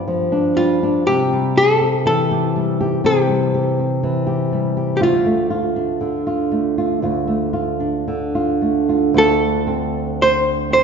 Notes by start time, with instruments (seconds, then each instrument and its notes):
Already playing: nylon-string guitar G2 G3 B3 D4, hollow-body jazz guitar D5
0.07 nylon-string guitar F3
0.32 nylon-string guitar D4
0.57 nylon-string guitar G3, hollow-body jazz guitar F4
0.83 nylon-string guitar D4
1.07 nylon-string guitar C3 G4, hollow-body jazz guitar G4
1.33 nylon-string guitar G3
1.57 nylon-string guitar G4, hollow-body jazz guitar A4
1.81 nylon-string guitar C4
2.05 nylon-string guitar E3, hollow-body jazz guitar A4
2.31 nylon-string guitar G4
2.55 nylon-string guitar G3
2.81 nylon-string guitar G4
3.04 nylon-string guitar C3 G4, hollow-body jazz guitar G4
3.29 nylon-string guitar G3
3.54 nylon-string guitar G4
3.79 nylon-string guitar C4
4.03 nylon-string guitar E3
4.27 nylon-string guitar G4
4.52 nylon-string guitar G3
4.77 nylon-string guitar G4
4.97 nylon-string guitar D2, hollow-body jazz guitar G4
5.01 nylon-string guitar F4, hollow-body jazz guitar F4
5.26 nylon-string guitar A3
5.50 nylon-string guitar F4
5.76 nylon-string guitar D4
6.01 nylon-string guitar D3
6.27 nylon-string guitar F4
6.52 nylon-string guitar A3
6.78 nylon-string guitar F4
7.02 nylon-string guitar D2 F4
7.28 nylon-string guitar A3
7.53 nylon-string guitar F4
7.80 nylon-string guitar D4
8.08 nylon-string guitar D3
8.35 nylon-string guitar F4
8.62 nylon-string guitar A3
8.89 nylon-string guitar F4
9.14 nylon-string guitar D2
9.18 hollow-body jazz guitar A4
9.67 nylon-string guitar C4
10.22 hollow-body jazz guitar C5
10.70 nylon-string guitar C4, hollow-body jazz guitar C5